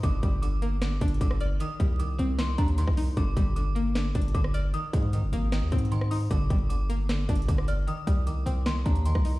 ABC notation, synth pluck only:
X:1
M:4/4
L:1/8
Q:1/4=153
K:Gphr
V:1 name="Synth pluck" clef=bass
D, G, D, B, D, D D, d | E, G, E, C E, D E, E | D, G, D, B, D, D D, d | E, A, E, B, E, C E, E |
D, G, D, B, D, D D, d | E, G, E, C E, D E, E |]